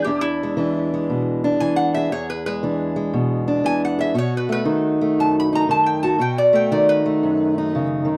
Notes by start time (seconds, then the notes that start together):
Already playing: E3 G#3 G#4
0.04 E2 D4 G4
0.21 E4
0.43 G#3
0.57 E3 D4
0.94 G#3
1.10 B2
1.44 D4
1.60 E3 G#5
1.76 F#5
1.94 G#4 E5
2.12 E2 G#4 C#5
2.30 B4
2.46 G#3 B4
2.63 E3 D4
2.96 G#3
3.13 B2
3.48 D4
3.64 E3 G#5
3.85 F#5
3.99 G#4 E5
4.14 B2 F#4
4.18 C#5
4.37 B4
4.49 A3 B4
4.65 D#3 D#4
5.01 A3
5.18 F#2 A5
5.40 B5
5.53 D#4 A#5
5.69 D#3 A5
5.86 G5
6.03 F#4 A5
6.18 B2 F#4 G5
6.38 D5
6.53 A3 G5
6.71 D#3 D#4 D5
6.89 B4
7.06 A3
7.23 F#2
7.58 D#4
7.75 C#3
8.05 D#3